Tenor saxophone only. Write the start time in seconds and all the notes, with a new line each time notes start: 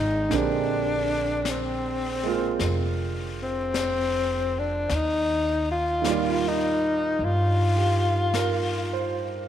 Already playing: D#4
0.35 D4
1.49 C4
3.43 C4
4.59 D4
4.95 D#4
5.71 F4
6.48 D#4
7.24 F4